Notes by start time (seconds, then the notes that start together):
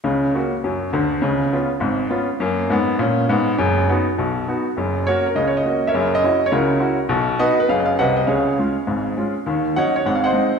0.04 C#2 C#3
0.34 A#3 C#4 F#4
0.64 F#2 F#3
0.93 D2 D3
1.22 C#2 C#3
1.53 B3 C#4 F4
1.80 G#1 G#2
2.10 B3 C#4 F4
2.40 F#2 A#3
2.70 G#2 B3
2.99 A#2 C#4
3.29 G#2 B3
3.58 F#1 F#2
3.89 B3 D#4 F#4
4.18 B1 B2
4.48 B3 D#4 F#4
4.77 F#1 F#2
5.07 A#3 C#4 F#4 A#4 C#5
5.26 A#4
5.35 C#2 C#3 D#5
5.47 C#5
5.57 D#5
5.65 A#3 C#4 F#4
5.87 A#4 C#5 E5
5.94 F#1 F#2
6.15 D#5
6.24 C#4 E4 F#4
6.46 C#5
6.52 C#2 C#3 E4 F#4 A#4
6.80 C#4 E4 F#4
7.09 B1 B2
7.39 B3 D#4 F#4 B4 D#5
7.60 B4
7.68 F#1 F#2 F5
7.80 D#5
7.86 F5
7.99 C2 C3 B4 D#5 F#5
8.17 D#5
8.27 C#2 C#3 G#4 C#5 F5
8.59 G#3 C#4 F4
8.87 G#1 G#2
9.17 G#3 C#4 F4
9.46 D#2 D#3
9.76 F#3 C#4 D#4 C#5 D#5 F#5
9.96 C#5
10.06 G#1 G#2 F#5
10.15 F5
10.24 C5 D#5 F#5
10.33 G#3 C4 D#4